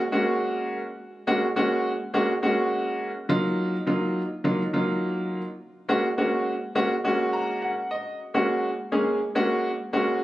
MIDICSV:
0, 0, Header, 1, 2, 480
1, 0, Start_track
1, 0, Key_signature, 6, "major"
1, 0, Tempo, 576923
1, 1060, Time_signature, 4, 2, 24, 8
1, 8519, End_track
2, 0, Start_track
2, 0, Title_t, "Grand piano"
2, 0, Program_c, 0, 0
2, 98, Note_on_c, 0, 56, 79
2, 100, Note_on_c, 0, 58, 73
2, 101, Note_on_c, 0, 61, 74
2, 103, Note_on_c, 0, 66, 90
2, 659, Note_off_c, 0, 56, 0
2, 660, Note_off_c, 0, 58, 0
2, 661, Note_off_c, 0, 61, 0
2, 661, Note_off_c, 0, 66, 0
2, 1057, Note_on_c, 0, 56, 83
2, 1059, Note_on_c, 0, 58, 73
2, 1060, Note_on_c, 0, 61, 73
2, 1060, Note_on_c, 0, 66, 90
2, 1199, Note_off_c, 0, 56, 0
2, 1199, Note_off_c, 0, 58, 0
2, 1200, Note_off_c, 0, 61, 0
2, 1200, Note_off_c, 0, 66, 0
2, 1297, Note_on_c, 0, 56, 82
2, 1298, Note_on_c, 0, 58, 77
2, 1299, Note_on_c, 0, 61, 78
2, 1301, Note_on_c, 0, 66, 91
2, 1578, Note_off_c, 0, 56, 0
2, 1579, Note_off_c, 0, 58, 0
2, 1580, Note_off_c, 0, 61, 0
2, 1580, Note_off_c, 0, 66, 0
2, 1778, Note_on_c, 0, 56, 87
2, 1779, Note_on_c, 0, 58, 80
2, 1780, Note_on_c, 0, 61, 77
2, 1782, Note_on_c, 0, 66, 92
2, 1919, Note_off_c, 0, 56, 0
2, 1920, Note_off_c, 0, 58, 0
2, 1920, Note_off_c, 0, 61, 0
2, 1921, Note_off_c, 0, 66, 0
2, 2016, Note_on_c, 0, 56, 80
2, 2018, Note_on_c, 0, 58, 70
2, 2020, Note_on_c, 0, 61, 73
2, 2021, Note_on_c, 0, 66, 87
2, 2578, Note_off_c, 0, 56, 0
2, 2579, Note_off_c, 0, 58, 0
2, 2580, Note_off_c, 0, 61, 0
2, 2580, Note_off_c, 0, 66, 0
2, 2737, Note_on_c, 0, 54, 84
2, 2738, Note_on_c, 0, 58, 76
2, 2741, Note_on_c, 0, 63, 82
2, 2742, Note_on_c, 0, 65, 96
2, 3123, Note_off_c, 0, 54, 0
2, 3123, Note_off_c, 0, 58, 0
2, 3124, Note_off_c, 0, 63, 0
2, 3125, Note_off_c, 0, 65, 0
2, 3216, Note_on_c, 0, 54, 84
2, 3218, Note_on_c, 0, 58, 75
2, 3220, Note_on_c, 0, 63, 78
2, 3221, Note_on_c, 0, 65, 89
2, 3498, Note_off_c, 0, 54, 0
2, 3499, Note_off_c, 0, 58, 0
2, 3500, Note_off_c, 0, 63, 0
2, 3501, Note_off_c, 0, 65, 0
2, 3695, Note_on_c, 0, 54, 84
2, 3698, Note_on_c, 0, 58, 80
2, 3698, Note_on_c, 0, 63, 80
2, 3700, Note_on_c, 0, 65, 92
2, 3838, Note_off_c, 0, 54, 0
2, 3839, Note_off_c, 0, 58, 0
2, 3839, Note_off_c, 0, 63, 0
2, 3840, Note_off_c, 0, 65, 0
2, 3938, Note_on_c, 0, 54, 81
2, 3940, Note_on_c, 0, 58, 74
2, 3941, Note_on_c, 0, 63, 71
2, 3942, Note_on_c, 0, 65, 88
2, 4499, Note_off_c, 0, 54, 0
2, 4500, Note_off_c, 0, 58, 0
2, 4500, Note_off_c, 0, 63, 0
2, 4501, Note_off_c, 0, 65, 0
2, 4897, Note_on_c, 0, 56, 83
2, 4898, Note_on_c, 0, 58, 74
2, 4899, Note_on_c, 0, 61, 78
2, 4901, Note_on_c, 0, 66, 93
2, 5038, Note_off_c, 0, 56, 0
2, 5039, Note_off_c, 0, 58, 0
2, 5040, Note_off_c, 0, 61, 0
2, 5040, Note_off_c, 0, 66, 0
2, 5138, Note_on_c, 0, 56, 77
2, 5139, Note_on_c, 0, 58, 76
2, 5140, Note_on_c, 0, 61, 74
2, 5142, Note_on_c, 0, 66, 88
2, 5419, Note_off_c, 0, 56, 0
2, 5419, Note_off_c, 0, 58, 0
2, 5420, Note_off_c, 0, 61, 0
2, 5421, Note_off_c, 0, 66, 0
2, 5618, Note_on_c, 0, 56, 85
2, 5618, Note_on_c, 0, 58, 79
2, 5619, Note_on_c, 0, 61, 78
2, 5621, Note_on_c, 0, 66, 93
2, 5759, Note_off_c, 0, 56, 0
2, 5759, Note_off_c, 0, 58, 0
2, 5760, Note_off_c, 0, 61, 0
2, 5760, Note_off_c, 0, 66, 0
2, 5858, Note_on_c, 0, 56, 82
2, 5860, Note_on_c, 0, 58, 72
2, 5861, Note_on_c, 0, 61, 70
2, 5863, Note_on_c, 0, 66, 92
2, 6099, Note_on_c, 0, 82, 72
2, 6323, Note_off_c, 0, 82, 0
2, 6340, Note_on_c, 0, 78, 69
2, 6419, Note_off_c, 0, 56, 0
2, 6420, Note_off_c, 0, 58, 0
2, 6420, Note_off_c, 0, 61, 0
2, 6421, Note_off_c, 0, 66, 0
2, 6563, Note_off_c, 0, 78, 0
2, 6580, Note_on_c, 0, 75, 70
2, 6803, Note_off_c, 0, 75, 0
2, 6940, Note_on_c, 0, 56, 77
2, 6941, Note_on_c, 0, 58, 68
2, 6942, Note_on_c, 0, 61, 70
2, 6943, Note_on_c, 0, 66, 83
2, 7220, Note_off_c, 0, 56, 0
2, 7220, Note_off_c, 0, 58, 0
2, 7221, Note_off_c, 0, 61, 0
2, 7222, Note_off_c, 0, 66, 0
2, 7419, Note_on_c, 0, 56, 80
2, 7421, Note_on_c, 0, 58, 75
2, 7422, Note_on_c, 0, 61, 75
2, 7423, Note_on_c, 0, 68, 87
2, 7630, Note_off_c, 0, 56, 0
2, 7630, Note_off_c, 0, 58, 0
2, 7631, Note_off_c, 0, 61, 0
2, 7632, Note_off_c, 0, 68, 0
2, 7779, Note_on_c, 0, 56, 89
2, 7782, Note_on_c, 0, 58, 82
2, 7782, Note_on_c, 0, 61, 83
2, 7785, Note_on_c, 0, 66, 99
2, 8060, Note_off_c, 0, 56, 0
2, 8061, Note_off_c, 0, 58, 0
2, 8061, Note_off_c, 0, 61, 0
2, 8062, Note_off_c, 0, 66, 0
2, 8261, Note_on_c, 0, 56, 81
2, 8262, Note_on_c, 0, 58, 72
2, 8263, Note_on_c, 0, 61, 75
2, 8264, Note_on_c, 0, 66, 90
2, 8470, Note_off_c, 0, 56, 0
2, 8471, Note_off_c, 0, 58, 0
2, 8472, Note_off_c, 0, 61, 0
2, 8472, Note_off_c, 0, 66, 0
2, 8519, End_track
0, 0, End_of_file